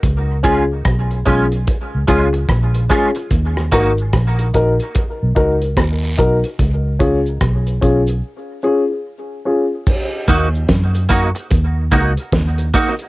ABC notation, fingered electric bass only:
X:1
M:4/4
L:1/16
Q:"Swing 16ths" 1/4=73
K:Ebm
V:1 name="Fingered electric bass" clef=bass
D,,4 C,,2 C,,2 z D,, D,,2 B,,,2 z2 | E,,2 A,,,2 B,,,2 B,,, z2 C,, D,,2 E,,2 C,, z | D,,4 C,,2 C,,2 z8 | z2 E,,2 G,,3 z E,,2 D,, z E,,2 z2 |]